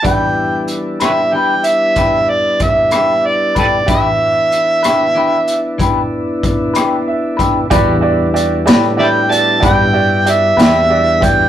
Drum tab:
HH |x-xx-xx-xx-x|x-xx-xx-xx-x|x-xx-xx-xx-x|
SD |---r-----r--|---r-----r--|---o-----o--|
BD |o-----o-o--o|o-----o-o--o|o-----o----o|